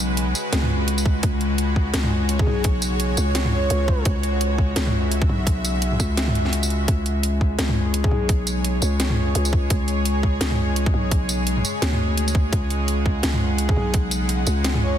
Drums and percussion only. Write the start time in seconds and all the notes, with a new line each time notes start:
0.17 closed hi-hat
0.35 tambourine
0.53 snare, closed hi-hat
0.63 mid tom
0.88 closed hi-hat
0.98 tambourine
1.06 kick
1.23 kick, closed hi-hat
1.41 closed hi-hat
1.58 closed hi-hat
1.76 kick
1.94 snare, closed hi-hat
2.04 mid tom
2.29 closed hi-hat
2.39 kick
2.47 mid tom
2.64 kick, closed hi-hat
2.82 closed hi-hat, tambourine
3.00 closed hi-hat
3.17 tambourine
3.35 snare, closed hi-hat
3.45 mid tom
3.70 closed hi-hat
3.88 kick
4.05 kick, closed hi-hat
4.23 closed hi-hat
4.41 closed hi-hat
4.58 kick
4.76 snare, closed hi-hat
4.86 mid tom
5.12 closed hi-hat
5.22 kick
5.29 mid tom
5.47 kick, closed hi-hat
5.65 closed hi-hat, tambourine
5.82 closed hi-hat
5.92 mid tom
6.00 kick, tambourine
6.17 snare, closed hi-hat
6.28 mid tom
6.35 closed hi-hat
6.45 snare
6.53 closed hi-hat
6.63 tambourine
6.70 closed hi-hat
6.88 kick, closed hi-hat
7.06 closed hi-hat
7.23 closed hi-hat
7.41 kick
7.59 snare, closed hi-hat
7.69 mid tom
7.94 closed hi-hat
8.04 kick
8.11 mid tom
8.29 kick, closed hi-hat
8.47 closed hi-hat, tambourine
8.64 closed hi-hat
8.82 tambourine
9.00 snare, closed hi-hat
9.10 mid tom
9.35 closed hi-hat
9.45 tambourine
9.53 kick
9.70 kick, closed hi-hat
9.88 closed hi-hat
10.05 closed hi-hat
10.23 kick
10.41 snare, closed hi-hat
10.51 mid tom
10.76 closed hi-hat
10.86 kick
10.94 mid tom
11.11 kick, closed hi-hat
11.29 closed hi-hat, tambourine
11.47 closed hi-hat
11.57 mid tom
11.65 tambourine
11.82 snare, closed hi-hat
11.92 mid tom
12.18 closed hi-hat
12.28 tambourine
12.35 kick
12.53 kick, closed hi-hat
12.70 closed hi-hat
12.88 closed hi-hat
13.06 kick
13.23 snare, closed hi-hat
13.34 mid tom
13.58 closed hi-hat
13.69 kick
13.76 mid tom
13.94 kick, closed hi-hat
14.11 closed hi-hat, tambourine
14.29 closed hi-hat
14.47 tambourine
14.64 snare, closed hi-hat
14.75 mid tom